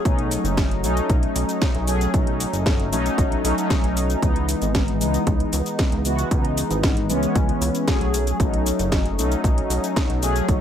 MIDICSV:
0, 0, Header, 1, 4, 480
1, 0, Start_track
1, 0, Tempo, 521739
1, 49, Time_signature, 4, 2, 24, 8
1, 9759, End_track
2, 0, Start_track
2, 0, Title_t, "Analog polysynth"
2, 0, Program_c, 0, 90
2, 45, Note_on_c, 0, 54, 81
2, 51, Note_on_c, 0, 57, 74
2, 59, Note_on_c, 0, 61, 73
2, 64, Note_on_c, 0, 63, 92
2, 738, Note_off_c, 0, 54, 0
2, 741, Note_off_c, 0, 57, 0
2, 745, Note_off_c, 0, 61, 0
2, 748, Note_off_c, 0, 63, 0
2, 761, Note_on_c, 0, 54, 84
2, 768, Note_on_c, 0, 57, 78
2, 775, Note_on_c, 0, 61, 80
2, 784, Note_on_c, 0, 63, 95
2, 1696, Note_off_c, 0, 54, 0
2, 1700, Note_off_c, 0, 57, 0
2, 1704, Note_off_c, 0, 61, 0
2, 1708, Note_off_c, 0, 63, 0
2, 1721, Note_on_c, 0, 54, 89
2, 1724, Note_on_c, 0, 57, 81
2, 1726, Note_on_c, 0, 61, 80
2, 1732, Note_on_c, 0, 68, 96
2, 1936, Note_off_c, 0, 54, 0
2, 1938, Note_off_c, 0, 57, 0
2, 1939, Note_off_c, 0, 61, 0
2, 1942, Note_off_c, 0, 68, 0
2, 1959, Note_on_c, 0, 54, 78
2, 1966, Note_on_c, 0, 57, 70
2, 1971, Note_on_c, 0, 61, 72
2, 1977, Note_on_c, 0, 63, 81
2, 2655, Note_off_c, 0, 54, 0
2, 2659, Note_off_c, 0, 57, 0
2, 2662, Note_off_c, 0, 61, 0
2, 2665, Note_off_c, 0, 63, 0
2, 2684, Note_on_c, 0, 54, 98
2, 2686, Note_on_c, 0, 57, 90
2, 2690, Note_on_c, 0, 61, 89
2, 2693, Note_on_c, 0, 63, 101
2, 3143, Note_off_c, 0, 54, 0
2, 3144, Note_off_c, 0, 57, 0
2, 3146, Note_off_c, 0, 61, 0
2, 3147, Note_off_c, 0, 63, 0
2, 3170, Note_on_c, 0, 54, 98
2, 3171, Note_on_c, 0, 57, 90
2, 3175, Note_on_c, 0, 61, 87
2, 3179, Note_on_c, 0, 63, 103
2, 3261, Note_off_c, 0, 54, 0
2, 3262, Note_off_c, 0, 57, 0
2, 3264, Note_off_c, 0, 61, 0
2, 3266, Note_off_c, 0, 63, 0
2, 3283, Note_on_c, 0, 54, 84
2, 3291, Note_on_c, 0, 57, 77
2, 3295, Note_on_c, 0, 61, 76
2, 3302, Note_on_c, 0, 63, 93
2, 3857, Note_off_c, 0, 54, 0
2, 3861, Note_off_c, 0, 57, 0
2, 3862, Note_off_c, 0, 61, 0
2, 3866, Note_off_c, 0, 63, 0
2, 3880, Note_on_c, 0, 52, 82
2, 3888, Note_on_c, 0, 56, 73
2, 3891, Note_on_c, 0, 59, 75
2, 3899, Note_on_c, 0, 63, 88
2, 4576, Note_off_c, 0, 52, 0
2, 4580, Note_off_c, 0, 56, 0
2, 4581, Note_off_c, 0, 59, 0
2, 4585, Note_off_c, 0, 63, 0
2, 4597, Note_on_c, 0, 52, 84
2, 4600, Note_on_c, 0, 56, 78
2, 4608, Note_on_c, 0, 59, 76
2, 4612, Note_on_c, 0, 63, 92
2, 5534, Note_off_c, 0, 52, 0
2, 5536, Note_off_c, 0, 56, 0
2, 5540, Note_off_c, 0, 59, 0
2, 5542, Note_off_c, 0, 63, 0
2, 5568, Note_on_c, 0, 52, 94
2, 5572, Note_on_c, 0, 56, 82
2, 5577, Note_on_c, 0, 66, 97
2, 5578, Note_on_c, 0, 59, 81
2, 5780, Note_off_c, 0, 52, 0
2, 5782, Note_off_c, 0, 56, 0
2, 5784, Note_off_c, 0, 66, 0
2, 5785, Note_off_c, 0, 59, 0
2, 5808, Note_on_c, 0, 52, 77
2, 5813, Note_on_c, 0, 56, 72
2, 5821, Note_on_c, 0, 59, 69
2, 5826, Note_on_c, 0, 63, 87
2, 6500, Note_off_c, 0, 52, 0
2, 6503, Note_off_c, 0, 56, 0
2, 6506, Note_off_c, 0, 59, 0
2, 6509, Note_off_c, 0, 63, 0
2, 6525, Note_on_c, 0, 52, 97
2, 6528, Note_on_c, 0, 56, 88
2, 6535, Note_on_c, 0, 59, 91
2, 6542, Note_on_c, 0, 61, 105
2, 7223, Note_off_c, 0, 52, 0
2, 7225, Note_off_c, 0, 56, 0
2, 7228, Note_off_c, 0, 59, 0
2, 7231, Note_off_c, 0, 61, 0
2, 7248, Note_on_c, 0, 54, 89
2, 7250, Note_on_c, 0, 57, 80
2, 7254, Note_on_c, 0, 61, 83
2, 7257, Note_on_c, 0, 68, 102
2, 7700, Note_off_c, 0, 54, 0
2, 7701, Note_off_c, 0, 57, 0
2, 7703, Note_off_c, 0, 61, 0
2, 7704, Note_off_c, 0, 68, 0
2, 7719, Note_on_c, 0, 54, 81
2, 7726, Note_on_c, 0, 57, 76
2, 7733, Note_on_c, 0, 61, 75
2, 7736, Note_on_c, 0, 63, 92
2, 8416, Note_off_c, 0, 54, 0
2, 8419, Note_off_c, 0, 57, 0
2, 8422, Note_off_c, 0, 61, 0
2, 8424, Note_off_c, 0, 63, 0
2, 8440, Note_on_c, 0, 54, 84
2, 8445, Note_on_c, 0, 57, 75
2, 8451, Note_on_c, 0, 61, 77
2, 8458, Note_on_c, 0, 63, 94
2, 9376, Note_off_c, 0, 54, 0
2, 9378, Note_off_c, 0, 57, 0
2, 9381, Note_off_c, 0, 61, 0
2, 9385, Note_off_c, 0, 63, 0
2, 9405, Note_on_c, 0, 54, 94
2, 9407, Note_on_c, 0, 57, 84
2, 9414, Note_on_c, 0, 61, 83
2, 9414, Note_on_c, 0, 68, 98
2, 9618, Note_off_c, 0, 54, 0
2, 9620, Note_off_c, 0, 57, 0
2, 9623, Note_off_c, 0, 61, 0
2, 9623, Note_off_c, 0, 68, 0
2, 9643, Note_on_c, 0, 54, 76
2, 9649, Note_on_c, 0, 57, 71
2, 9655, Note_on_c, 0, 61, 72
2, 9659, Note_on_c, 0, 63, 87
2, 9759, Note_off_c, 0, 54, 0
2, 9759, Note_off_c, 0, 57, 0
2, 9759, Note_off_c, 0, 61, 0
2, 9759, Note_off_c, 0, 63, 0
2, 9759, End_track
3, 0, Start_track
3, 0, Title_t, "Analog synth bass"
3, 0, Program_c, 1, 38
3, 49, Note_on_c, 1, 35, 101
3, 344, Note_off_c, 1, 35, 0
3, 406, Note_on_c, 1, 30, 83
3, 765, Note_on_c, 1, 35, 85
3, 778, Note_off_c, 1, 30, 0
3, 926, Note_off_c, 1, 35, 0
3, 1008, Note_on_c, 1, 35, 90
3, 1167, Note_off_c, 1, 35, 0
3, 1246, Note_on_c, 1, 35, 100
3, 1327, Note_off_c, 1, 35, 0
3, 1612, Note_on_c, 1, 35, 79
3, 1905, Note_off_c, 1, 35, 0
3, 1966, Note_on_c, 1, 35, 99
3, 2263, Note_off_c, 1, 35, 0
3, 2328, Note_on_c, 1, 30, 82
3, 2687, Note_on_c, 1, 35, 88
3, 2701, Note_off_c, 1, 30, 0
3, 2847, Note_off_c, 1, 35, 0
3, 2928, Note_on_c, 1, 35, 88
3, 3088, Note_off_c, 1, 35, 0
3, 3167, Note_on_c, 1, 35, 102
3, 3248, Note_off_c, 1, 35, 0
3, 3528, Note_on_c, 1, 35, 79
3, 3823, Note_off_c, 1, 35, 0
3, 3888, Note_on_c, 1, 37, 97
3, 4183, Note_off_c, 1, 37, 0
3, 4248, Note_on_c, 1, 32, 86
3, 4604, Note_on_c, 1, 37, 85
3, 4618, Note_off_c, 1, 32, 0
3, 4765, Note_off_c, 1, 37, 0
3, 4848, Note_on_c, 1, 37, 89
3, 5008, Note_off_c, 1, 37, 0
3, 5086, Note_on_c, 1, 37, 98
3, 5167, Note_off_c, 1, 37, 0
3, 5448, Note_on_c, 1, 37, 78
3, 5743, Note_off_c, 1, 37, 0
3, 5807, Note_on_c, 1, 37, 100
3, 6103, Note_off_c, 1, 37, 0
3, 6168, Note_on_c, 1, 32, 83
3, 6525, Note_on_c, 1, 37, 88
3, 6539, Note_off_c, 1, 32, 0
3, 6686, Note_off_c, 1, 37, 0
3, 6766, Note_on_c, 1, 37, 88
3, 6926, Note_off_c, 1, 37, 0
3, 7003, Note_on_c, 1, 37, 97
3, 7086, Note_off_c, 1, 37, 0
3, 7369, Note_on_c, 1, 35, 80
3, 7663, Note_off_c, 1, 35, 0
3, 7726, Note_on_c, 1, 35, 97
3, 8022, Note_off_c, 1, 35, 0
3, 8088, Note_on_c, 1, 30, 88
3, 8446, Note_on_c, 1, 35, 88
3, 8460, Note_off_c, 1, 30, 0
3, 8607, Note_off_c, 1, 35, 0
3, 8685, Note_on_c, 1, 35, 90
3, 8846, Note_off_c, 1, 35, 0
3, 8922, Note_on_c, 1, 35, 104
3, 9005, Note_off_c, 1, 35, 0
3, 9286, Note_on_c, 1, 35, 80
3, 9582, Note_off_c, 1, 35, 0
3, 9646, Note_on_c, 1, 35, 99
3, 9759, Note_off_c, 1, 35, 0
3, 9759, End_track
4, 0, Start_track
4, 0, Title_t, "Drums"
4, 48, Note_on_c, 9, 36, 123
4, 52, Note_on_c, 9, 42, 63
4, 52, Note_on_c, 9, 82, 30
4, 140, Note_off_c, 9, 36, 0
4, 144, Note_off_c, 9, 42, 0
4, 144, Note_off_c, 9, 82, 0
4, 171, Note_on_c, 9, 42, 36
4, 263, Note_off_c, 9, 42, 0
4, 288, Note_on_c, 9, 46, 116
4, 289, Note_on_c, 9, 82, 76
4, 380, Note_off_c, 9, 46, 0
4, 381, Note_off_c, 9, 82, 0
4, 412, Note_on_c, 9, 42, 39
4, 413, Note_on_c, 9, 82, 44
4, 504, Note_off_c, 9, 42, 0
4, 505, Note_off_c, 9, 82, 0
4, 528, Note_on_c, 9, 36, 127
4, 532, Note_on_c, 9, 38, 126
4, 532, Note_on_c, 9, 42, 67
4, 532, Note_on_c, 9, 82, 34
4, 620, Note_off_c, 9, 36, 0
4, 624, Note_off_c, 9, 38, 0
4, 624, Note_off_c, 9, 42, 0
4, 624, Note_off_c, 9, 82, 0
4, 657, Note_on_c, 9, 42, 37
4, 749, Note_off_c, 9, 42, 0
4, 772, Note_on_c, 9, 46, 91
4, 772, Note_on_c, 9, 82, 71
4, 864, Note_off_c, 9, 46, 0
4, 864, Note_off_c, 9, 82, 0
4, 892, Note_on_c, 9, 42, 38
4, 892, Note_on_c, 9, 82, 42
4, 984, Note_off_c, 9, 42, 0
4, 984, Note_off_c, 9, 82, 0
4, 1008, Note_on_c, 9, 36, 127
4, 1010, Note_on_c, 9, 42, 66
4, 1010, Note_on_c, 9, 82, 33
4, 1100, Note_off_c, 9, 36, 0
4, 1102, Note_off_c, 9, 42, 0
4, 1102, Note_off_c, 9, 82, 0
4, 1130, Note_on_c, 9, 42, 38
4, 1222, Note_off_c, 9, 42, 0
4, 1249, Note_on_c, 9, 46, 110
4, 1249, Note_on_c, 9, 82, 69
4, 1341, Note_off_c, 9, 46, 0
4, 1341, Note_off_c, 9, 82, 0
4, 1370, Note_on_c, 9, 42, 40
4, 1371, Note_on_c, 9, 82, 42
4, 1462, Note_off_c, 9, 42, 0
4, 1463, Note_off_c, 9, 82, 0
4, 1487, Note_on_c, 9, 36, 123
4, 1487, Note_on_c, 9, 38, 123
4, 1487, Note_on_c, 9, 42, 68
4, 1487, Note_on_c, 9, 82, 33
4, 1579, Note_off_c, 9, 36, 0
4, 1579, Note_off_c, 9, 38, 0
4, 1579, Note_off_c, 9, 42, 0
4, 1579, Note_off_c, 9, 82, 0
4, 1607, Note_on_c, 9, 42, 40
4, 1699, Note_off_c, 9, 42, 0
4, 1724, Note_on_c, 9, 46, 99
4, 1725, Note_on_c, 9, 82, 75
4, 1816, Note_off_c, 9, 46, 0
4, 1817, Note_off_c, 9, 82, 0
4, 1850, Note_on_c, 9, 42, 39
4, 1851, Note_on_c, 9, 82, 43
4, 1942, Note_off_c, 9, 42, 0
4, 1943, Note_off_c, 9, 82, 0
4, 1968, Note_on_c, 9, 36, 127
4, 1971, Note_on_c, 9, 42, 63
4, 1971, Note_on_c, 9, 82, 33
4, 2060, Note_off_c, 9, 36, 0
4, 2063, Note_off_c, 9, 42, 0
4, 2063, Note_off_c, 9, 82, 0
4, 2090, Note_on_c, 9, 42, 36
4, 2182, Note_off_c, 9, 42, 0
4, 2211, Note_on_c, 9, 46, 113
4, 2211, Note_on_c, 9, 82, 76
4, 2303, Note_off_c, 9, 46, 0
4, 2303, Note_off_c, 9, 82, 0
4, 2332, Note_on_c, 9, 42, 39
4, 2332, Note_on_c, 9, 82, 45
4, 2424, Note_off_c, 9, 42, 0
4, 2424, Note_off_c, 9, 82, 0
4, 2447, Note_on_c, 9, 36, 121
4, 2452, Note_on_c, 9, 38, 118
4, 2453, Note_on_c, 9, 42, 63
4, 2453, Note_on_c, 9, 82, 32
4, 2539, Note_off_c, 9, 36, 0
4, 2544, Note_off_c, 9, 38, 0
4, 2545, Note_off_c, 9, 42, 0
4, 2545, Note_off_c, 9, 82, 0
4, 2572, Note_on_c, 9, 42, 38
4, 2664, Note_off_c, 9, 42, 0
4, 2692, Note_on_c, 9, 46, 93
4, 2692, Note_on_c, 9, 82, 74
4, 2784, Note_off_c, 9, 46, 0
4, 2784, Note_off_c, 9, 82, 0
4, 2813, Note_on_c, 9, 42, 37
4, 2814, Note_on_c, 9, 82, 41
4, 2905, Note_off_c, 9, 42, 0
4, 2906, Note_off_c, 9, 82, 0
4, 2927, Note_on_c, 9, 36, 127
4, 2932, Note_on_c, 9, 42, 64
4, 2933, Note_on_c, 9, 82, 34
4, 3019, Note_off_c, 9, 36, 0
4, 3024, Note_off_c, 9, 42, 0
4, 3025, Note_off_c, 9, 82, 0
4, 3054, Note_on_c, 9, 42, 39
4, 3146, Note_off_c, 9, 42, 0
4, 3172, Note_on_c, 9, 46, 111
4, 3172, Note_on_c, 9, 82, 76
4, 3264, Note_off_c, 9, 46, 0
4, 3264, Note_off_c, 9, 82, 0
4, 3294, Note_on_c, 9, 42, 37
4, 3294, Note_on_c, 9, 82, 43
4, 3386, Note_off_c, 9, 42, 0
4, 3386, Note_off_c, 9, 82, 0
4, 3407, Note_on_c, 9, 36, 126
4, 3411, Note_on_c, 9, 38, 119
4, 3411, Note_on_c, 9, 42, 64
4, 3411, Note_on_c, 9, 82, 33
4, 3499, Note_off_c, 9, 36, 0
4, 3503, Note_off_c, 9, 38, 0
4, 3503, Note_off_c, 9, 42, 0
4, 3503, Note_off_c, 9, 82, 0
4, 3532, Note_on_c, 9, 42, 39
4, 3624, Note_off_c, 9, 42, 0
4, 3651, Note_on_c, 9, 46, 96
4, 3651, Note_on_c, 9, 82, 76
4, 3743, Note_off_c, 9, 46, 0
4, 3743, Note_off_c, 9, 82, 0
4, 3771, Note_on_c, 9, 42, 38
4, 3771, Note_on_c, 9, 82, 44
4, 3863, Note_off_c, 9, 42, 0
4, 3863, Note_off_c, 9, 82, 0
4, 3887, Note_on_c, 9, 36, 122
4, 3891, Note_on_c, 9, 42, 65
4, 3891, Note_on_c, 9, 82, 33
4, 3979, Note_off_c, 9, 36, 0
4, 3983, Note_off_c, 9, 42, 0
4, 3983, Note_off_c, 9, 82, 0
4, 4011, Note_on_c, 9, 42, 37
4, 4103, Note_off_c, 9, 42, 0
4, 4127, Note_on_c, 9, 46, 107
4, 4128, Note_on_c, 9, 82, 81
4, 4219, Note_off_c, 9, 46, 0
4, 4220, Note_off_c, 9, 82, 0
4, 4248, Note_on_c, 9, 42, 38
4, 4248, Note_on_c, 9, 82, 44
4, 4340, Note_off_c, 9, 42, 0
4, 4340, Note_off_c, 9, 82, 0
4, 4367, Note_on_c, 9, 36, 119
4, 4368, Note_on_c, 9, 38, 113
4, 4369, Note_on_c, 9, 42, 66
4, 4369, Note_on_c, 9, 82, 33
4, 4459, Note_off_c, 9, 36, 0
4, 4460, Note_off_c, 9, 38, 0
4, 4461, Note_off_c, 9, 42, 0
4, 4461, Note_off_c, 9, 82, 0
4, 4490, Note_on_c, 9, 42, 38
4, 4582, Note_off_c, 9, 42, 0
4, 4609, Note_on_c, 9, 46, 89
4, 4610, Note_on_c, 9, 82, 80
4, 4701, Note_off_c, 9, 46, 0
4, 4702, Note_off_c, 9, 82, 0
4, 4730, Note_on_c, 9, 42, 38
4, 4730, Note_on_c, 9, 82, 44
4, 4822, Note_off_c, 9, 42, 0
4, 4822, Note_off_c, 9, 82, 0
4, 4847, Note_on_c, 9, 42, 66
4, 4847, Note_on_c, 9, 82, 36
4, 4848, Note_on_c, 9, 36, 120
4, 4939, Note_off_c, 9, 42, 0
4, 4939, Note_off_c, 9, 82, 0
4, 4940, Note_off_c, 9, 36, 0
4, 4970, Note_on_c, 9, 42, 38
4, 5062, Note_off_c, 9, 42, 0
4, 5085, Note_on_c, 9, 46, 102
4, 5086, Note_on_c, 9, 82, 75
4, 5177, Note_off_c, 9, 46, 0
4, 5178, Note_off_c, 9, 82, 0
4, 5208, Note_on_c, 9, 42, 36
4, 5208, Note_on_c, 9, 82, 45
4, 5300, Note_off_c, 9, 42, 0
4, 5300, Note_off_c, 9, 82, 0
4, 5325, Note_on_c, 9, 38, 116
4, 5326, Note_on_c, 9, 42, 64
4, 5326, Note_on_c, 9, 82, 34
4, 5327, Note_on_c, 9, 36, 121
4, 5417, Note_off_c, 9, 38, 0
4, 5418, Note_off_c, 9, 42, 0
4, 5418, Note_off_c, 9, 82, 0
4, 5419, Note_off_c, 9, 36, 0
4, 5449, Note_on_c, 9, 42, 40
4, 5541, Note_off_c, 9, 42, 0
4, 5566, Note_on_c, 9, 46, 92
4, 5566, Note_on_c, 9, 82, 78
4, 5658, Note_off_c, 9, 46, 0
4, 5658, Note_off_c, 9, 82, 0
4, 5691, Note_on_c, 9, 42, 38
4, 5691, Note_on_c, 9, 82, 46
4, 5783, Note_off_c, 9, 42, 0
4, 5783, Note_off_c, 9, 82, 0
4, 5807, Note_on_c, 9, 36, 115
4, 5808, Note_on_c, 9, 42, 66
4, 5808, Note_on_c, 9, 82, 36
4, 5899, Note_off_c, 9, 36, 0
4, 5900, Note_off_c, 9, 42, 0
4, 5900, Note_off_c, 9, 82, 0
4, 5930, Note_on_c, 9, 42, 39
4, 6022, Note_off_c, 9, 42, 0
4, 6049, Note_on_c, 9, 46, 103
4, 6050, Note_on_c, 9, 82, 85
4, 6141, Note_off_c, 9, 46, 0
4, 6142, Note_off_c, 9, 82, 0
4, 6170, Note_on_c, 9, 42, 41
4, 6170, Note_on_c, 9, 82, 48
4, 6262, Note_off_c, 9, 42, 0
4, 6262, Note_off_c, 9, 82, 0
4, 6287, Note_on_c, 9, 36, 114
4, 6289, Note_on_c, 9, 38, 116
4, 6289, Note_on_c, 9, 42, 67
4, 6289, Note_on_c, 9, 82, 36
4, 6379, Note_off_c, 9, 36, 0
4, 6381, Note_off_c, 9, 38, 0
4, 6381, Note_off_c, 9, 42, 0
4, 6381, Note_off_c, 9, 82, 0
4, 6411, Note_on_c, 9, 42, 40
4, 6503, Note_off_c, 9, 42, 0
4, 6529, Note_on_c, 9, 46, 86
4, 6529, Note_on_c, 9, 82, 81
4, 6621, Note_off_c, 9, 46, 0
4, 6621, Note_off_c, 9, 82, 0
4, 6649, Note_on_c, 9, 42, 39
4, 6650, Note_on_c, 9, 82, 46
4, 6741, Note_off_c, 9, 42, 0
4, 6742, Note_off_c, 9, 82, 0
4, 6767, Note_on_c, 9, 36, 123
4, 6767, Note_on_c, 9, 42, 70
4, 6767, Note_on_c, 9, 82, 38
4, 6859, Note_off_c, 9, 36, 0
4, 6859, Note_off_c, 9, 42, 0
4, 6859, Note_off_c, 9, 82, 0
4, 6891, Note_on_c, 9, 42, 41
4, 6983, Note_off_c, 9, 42, 0
4, 7007, Note_on_c, 9, 46, 98
4, 7008, Note_on_c, 9, 82, 78
4, 7099, Note_off_c, 9, 46, 0
4, 7100, Note_off_c, 9, 82, 0
4, 7127, Note_on_c, 9, 42, 40
4, 7127, Note_on_c, 9, 82, 49
4, 7219, Note_off_c, 9, 42, 0
4, 7219, Note_off_c, 9, 82, 0
4, 7245, Note_on_c, 9, 36, 117
4, 7248, Note_on_c, 9, 38, 120
4, 7248, Note_on_c, 9, 42, 71
4, 7249, Note_on_c, 9, 82, 37
4, 7337, Note_off_c, 9, 36, 0
4, 7340, Note_off_c, 9, 38, 0
4, 7340, Note_off_c, 9, 42, 0
4, 7341, Note_off_c, 9, 82, 0
4, 7370, Note_on_c, 9, 42, 41
4, 7462, Note_off_c, 9, 42, 0
4, 7489, Note_on_c, 9, 46, 90
4, 7489, Note_on_c, 9, 82, 83
4, 7581, Note_off_c, 9, 46, 0
4, 7581, Note_off_c, 9, 82, 0
4, 7610, Note_on_c, 9, 42, 40
4, 7610, Note_on_c, 9, 82, 47
4, 7702, Note_off_c, 9, 42, 0
4, 7702, Note_off_c, 9, 82, 0
4, 7726, Note_on_c, 9, 36, 119
4, 7731, Note_on_c, 9, 42, 68
4, 7731, Note_on_c, 9, 82, 35
4, 7818, Note_off_c, 9, 36, 0
4, 7823, Note_off_c, 9, 42, 0
4, 7823, Note_off_c, 9, 82, 0
4, 7853, Note_on_c, 9, 42, 39
4, 7945, Note_off_c, 9, 42, 0
4, 7971, Note_on_c, 9, 46, 98
4, 7971, Note_on_c, 9, 82, 84
4, 8063, Note_off_c, 9, 46, 0
4, 8063, Note_off_c, 9, 82, 0
4, 8090, Note_on_c, 9, 42, 42
4, 8090, Note_on_c, 9, 82, 47
4, 8182, Note_off_c, 9, 42, 0
4, 8182, Note_off_c, 9, 82, 0
4, 8206, Note_on_c, 9, 36, 116
4, 8209, Note_on_c, 9, 38, 118
4, 8209, Note_on_c, 9, 42, 69
4, 8210, Note_on_c, 9, 82, 37
4, 8298, Note_off_c, 9, 36, 0
4, 8301, Note_off_c, 9, 38, 0
4, 8301, Note_off_c, 9, 42, 0
4, 8302, Note_off_c, 9, 82, 0
4, 8331, Note_on_c, 9, 42, 39
4, 8423, Note_off_c, 9, 42, 0
4, 8454, Note_on_c, 9, 46, 84
4, 8454, Note_on_c, 9, 82, 83
4, 8546, Note_off_c, 9, 46, 0
4, 8546, Note_off_c, 9, 82, 0
4, 8571, Note_on_c, 9, 42, 41
4, 8571, Note_on_c, 9, 82, 47
4, 8663, Note_off_c, 9, 42, 0
4, 8663, Note_off_c, 9, 82, 0
4, 8686, Note_on_c, 9, 36, 119
4, 8693, Note_on_c, 9, 42, 72
4, 8693, Note_on_c, 9, 82, 37
4, 8778, Note_off_c, 9, 36, 0
4, 8785, Note_off_c, 9, 42, 0
4, 8785, Note_off_c, 9, 82, 0
4, 8812, Note_on_c, 9, 42, 42
4, 8904, Note_off_c, 9, 42, 0
4, 8927, Note_on_c, 9, 46, 97
4, 8927, Note_on_c, 9, 82, 77
4, 9019, Note_off_c, 9, 46, 0
4, 9019, Note_off_c, 9, 82, 0
4, 9051, Note_on_c, 9, 42, 41
4, 9051, Note_on_c, 9, 82, 46
4, 9143, Note_off_c, 9, 42, 0
4, 9143, Note_off_c, 9, 82, 0
4, 9166, Note_on_c, 9, 36, 114
4, 9171, Note_on_c, 9, 38, 124
4, 9171, Note_on_c, 9, 42, 72
4, 9171, Note_on_c, 9, 82, 37
4, 9258, Note_off_c, 9, 36, 0
4, 9263, Note_off_c, 9, 38, 0
4, 9263, Note_off_c, 9, 42, 0
4, 9263, Note_off_c, 9, 82, 0
4, 9290, Note_on_c, 9, 42, 41
4, 9382, Note_off_c, 9, 42, 0
4, 9408, Note_on_c, 9, 46, 85
4, 9408, Note_on_c, 9, 82, 83
4, 9500, Note_off_c, 9, 46, 0
4, 9500, Note_off_c, 9, 82, 0
4, 9529, Note_on_c, 9, 42, 42
4, 9529, Note_on_c, 9, 82, 46
4, 9621, Note_off_c, 9, 42, 0
4, 9621, Note_off_c, 9, 82, 0
4, 9646, Note_on_c, 9, 36, 121
4, 9648, Note_on_c, 9, 42, 71
4, 9648, Note_on_c, 9, 82, 34
4, 9738, Note_off_c, 9, 36, 0
4, 9740, Note_off_c, 9, 42, 0
4, 9740, Note_off_c, 9, 82, 0
4, 9759, End_track
0, 0, End_of_file